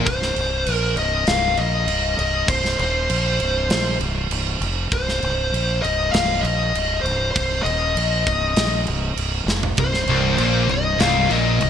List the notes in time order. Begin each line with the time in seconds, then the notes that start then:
0.05 C1 C5, kick, crash
0.22 snare
0.36 C1, crash
0.66 A#1, crash
0.72 A#4
0.97 C1 D#5, crash
1.27 C1 F5, snare, crash
1.57 A#1 D#5, crash
1.87 C1, crash
2.19 C1 D#5, crash
2.48 C1 C5, kick, crash
2.65 snare
2.79 D#1 C5, crash
3.10 A#1, crash
3.40 C1, crash
3.69 A#1, snare, crash
4.00 C1, crash
4.30 C1, crash
4.61 F1, crash
4.91 C1 C5, kick, crash
5.08 snare
5.22 C1, crash
5.52 A#1, crash
5.82 C1 D#5, crash
6.11 C1 F5, snare, crash
6.41 A#1 D#5, crash
6.74 C1, crash
7.01 C1 C5
7.06 crash
7.31 C5
7.36 C1, kick, crash
7.63 D#1 D#5, crash
7.95 A#1, crash
8.27 C1, kick, crash
8.56 A#1, snare, crash
8.87 C1, crash
9.16 C1, crash
9.46 F1, snare
9.63 floor tom
9.77 C1 C2 C5, kick, crash
9.94 snare
10.06 C1 C2, crash
10.38 A#1 A#2, crash
10.69 C1 C2 D#5, crash
11.00 C1 C2 F5, snare, crash
11.30 A#1 A#2 D#5, crash
11.61 C1 C2, crash